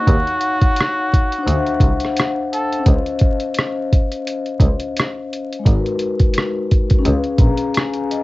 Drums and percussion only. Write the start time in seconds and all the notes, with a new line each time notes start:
0.07 kick, closed hi-hat
0.27 closed hi-hat
0.41 closed hi-hat
0.61 kick, closed hi-hat
0.76 closed hi-hat
0.80 cross-stick
1.13 kick, closed hi-hat
1.32 closed hi-hat
1.48 closed hi-hat
1.67 closed hi-hat
1.80 kick, closed hi-hat
2.00 closed hi-hat
2.05 cross-stick
2.17 cross-stick, closed hi-hat
2.53 closed hi-hat
2.72 closed hi-hat
2.86 kick, closed hi-hat
3.06 closed hi-hat
3.19 kick, closed hi-hat
3.40 closed hi-hat
3.54 closed hi-hat
3.59 cross-stick
3.93 kick, closed hi-hat
4.12 closed hi-hat
4.27 closed hi-hat
4.46 closed hi-hat
4.60 kick, closed hi-hat
4.80 closed hi-hat
4.97 cross-stick, closed hi-hat
5.33 closed hi-hat
5.53 closed hi-hat
5.66 kick, closed hi-hat
5.86 closed hi-hat
5.99 closed hi-hat
6.19 kick, closed hi-hat
6.34 closed hi-hat
6.38 cross-stick
6.71 kick, closed hi-hat
6.90 kick, closed hi-hat
7.05 closed hi-hat
7.24 closed hi-hat
7.38 kick, closed hi-hat
7.57 closed hi-hat
7.74 cross-stick, closed hi-hat
7.93 closed hi-hat
8.11 closed hi-hat